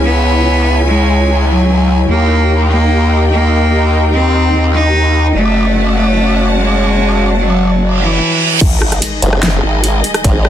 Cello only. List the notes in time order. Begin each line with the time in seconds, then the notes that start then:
0.04 B3
0.86 G#3
1.47 F#3
2.08 A#3
2.69 A#3
3.31 A#3
4.12 C4
4.73 D#4
5.35 A3
5.96 A3
6.57 G#3
7.39 F#3
8.00 E3